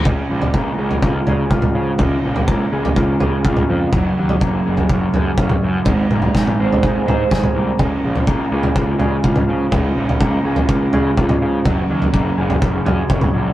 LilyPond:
<<
  \new Staff \with { instrumentName = "Clean electric guitar" } { \time 4/4 \key des \major \tempo 4 = 124 des8 f8 bes8 aes'8 f'8 aes'8 f'8 f8 | des8 f8 bes8 aes'8 f'8 aes'8 f'8 f8 | ges8 ges8 bes8 aes'8 des'8 aes'8 des'8 ges8 | aes8 bes8 ees'8 c''8 aes'8 c''8 aes'8 bes8 |
des8 f8 bes8 aes'8 f'8 aes'8 f'8 f8 | des8 f8 bes8 aes'8 f'8 aes'8 f'8 f8 | ges8 ges8 bes8 aes'8 des'8 aes'8 des'8 ges8 | }
  \new Staff \with { instrumentName = "Overdriven electric guitar" } { \clef bass \time 4/4 \key des \major <des aes des'>1 | <des aes des'>1 | <ges, des ges>1 | <aes, ees aes>1 |
<des aes des'>1 | <des aes des'>1 | <ges, des ges>1 | }
  \new Staff \with { instrumentName = "Picked electric bass" } { \clef bass \time 4/4 \key des \major des,8 bes,,8 des,8 des,8 des,8 des8 des,8 des8 | des,8 bes,,8 des,8 des,8 des,8 des8 des,8 f,8 | ges,,8 ees,8 ges,,8 ges,,8 ges,,8 ges,8 ges,,8 ges,8 | aes,,8 ges,,8 aes,,8 aes,,8 aes,,8 aes,8 aes,,8 c,8 |
des,8 bes,,8 des,8 des,8 des,8 des8 des,8 des8 | des,8 bes,,8 des,8 des,8 des,8 des8 des,8 des8 | ges,,8 ees,8 ges,,8 ges,,8 ges,,8 ges,8 ges,,8 bes,,8 | }
  \new DrumStaff \with { instrumentName = "Drums" } \drummode { \time 4/4 <bd tomfh>8. tomfh16 bd8. tomfh16 bd8 tomfh8 bd16 <tomfh toml>8. | <bd tomfh>8. tomfh16 bd8. tomfh16 bd8 tomfh8 bd16 <tomfh toml>8. | <bd tomfh>8. tomfh16 bd8. tomfh16 bd8 tomfh8 bd16 <tomfh toml>8. | <bd tomfh>8 toml16 tomfh16 <bd sn>16 toml8 tomfh16 bd8 <tomfh toml>8 <bd sn>16 <tomfh toml>8. |
<bd tomfh>8. tomfh16 bd8. tomfh16 bd8 tomfh8 bd16 <tomfh toml>8. | <bd tomfh>8. tomfh16 bd8. tomfh16 bd8 tomfh8 bd16 <tomfh toml>8. | <bd tomfh>8. tomfh16 bd8. tomfh16 bd8 tomfh8 bd16 <tomfh toml>8. | }
>>